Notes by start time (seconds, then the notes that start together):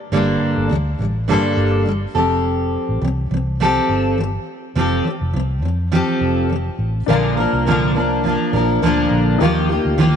0.12 G1 G2 D3 G3 A#3 D4 A4
0.57 G1
0.69 D2 G2 D3 G3
0.99 A1 G2 D3 G3
1.28 G2 D3 G3 A#3 D4 A4
1.57 G1
1.86 G2 D3 G3
2.15 F1 F3 C4 G4 A4
2.89 A1
3.02 C2 F3 C4
3.31 C2 F3 C4
3.60 F3 C4 G4 A4
3.89 G1
4.18 F3 C4
4.75 F1 F3 C4 G4 A4
5.04 F3 C4
5.21 F1
5.33 C2 F3 C4
5.62 F2 F3 C4
5.92 F3 C4 G4 A4
6.21 F1
6.49 F3 C4
6.79 A1
7.06 A#1 A#2 D3 F3 A#3 D4 A#4 F5
7.37 F3 A#3 D4 A#4
7.53 C2
7.66 A#2 D3 F3 A#3 D4 A#4
7.95 F3 A#3 D4 A#4
8.24 F3 A#3 D4 A#4
8.53 A#1 F3 A#3 D4 A#4
8.82 D2 A#2 D3 F3 A#3 D4 A#4
9.11 A#1
9.38 D#2 D#3 F3 A#3 D#4 F4 G4
9.42 F5
9.69 A#3 F4 G4
9.85 D2
9.98 D#3 F3 A#3 F4 G4